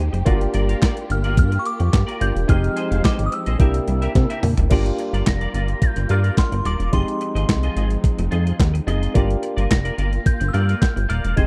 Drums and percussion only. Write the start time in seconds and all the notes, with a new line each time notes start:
0.14 closed hi-hat
0.26 kick, closed hi-hat
0.41 closed hi-hat
0.54 closed hi-hat
0.69 closed hi-hat
0.82 kick, snare, clap, closed hi-hat
0.97 closed hi-hat
1.10 closed hi-hat
1.24 closed hi-hat
1.37 kick, closed hi-hat
1.52 closed hi-hat
1.65 closed hi-hat
1.80 closed hi-hat
1.93 kick, snare, clap, closed hi-hat
2.09 closed hi-hat
2.21 closed hi-hat
2.37 closed hi-hat
2.49 kick, closed hi-hat
2.64 closed hi-hat
2.77 closed hi-hat
2.92 closed hi-hat
3.05 kick, snare, clap, closed hi-hat
3.19 closed hi-hat
3.32 closed hi-hat
3.46 closed hi-hat
3.60 kick, closed hi-hat
3.74 closed hi-hat
3.88 closed hi-hat
4.02 closed hi-hat
4.15 kick, snare, closed hi-hat
4.30 closed hi-hat
4.43 mid tom, open hi-hat
4.58 closed hi-hat, floor tom
4.71 kick, closed hi-hat, crash
4.86 closed hi-hat
4.99 closed hi-hat
5.14 closed hi-hat
5.27 kick, snare, clap, closed hi-hat
5.41 closed hi-hat
5.54 closed hi-hat
5.68 closed hi-hat
5.82 kick, closed hi-hat
5.96 closed hi-hat
6.09 closed hi-hat
6.24 closed hi-hat
6.38 kick, snare, clap, closed hi-hat
6.52 closed hi-hat
6.65 closed hi-hat
6.80 closed hi-hat
6.93 kick, closed hi-hat
7.08 closed hi-hat
7.21 closed hi-hat
7.36 closed hi-hat
7.49 kick, snare, clap, closed hi-hat
7.63 closed hi-hat
7.77 closed hi-hat
7.90 closed hi-hat
8.04 kick, closed hi-hat
8.19 closed hi-hat
8.32 closed hi-hat
8.47 closed hi-hat
8.60 kick, snare, clap, closed hi-hat
8.75 closed hi-hat
8.88 closed hi-hat
9.03 closed hi-hat
9.15 kick, closed hi-hat
9.30 closed hi-hat
9.43 closed hi-hat
9.58 closed hi-hat
9.71 kick, snare, clap, closed hi-hat
9.85 closed hi-hat
9.98 closed hi-hat
10.13 closed hi-hat
10.26 kick, closed hi-hat
10.41 closed hi-hat
10.54 closed hi-hat
10.69 closed hi-hat
10.82 kick, snare, clap, closed hi-hat
10.97 closed hi-hat
11.10 closed hi-hat
11.24 closed hi-hat
11.37 kick, closed hi-hat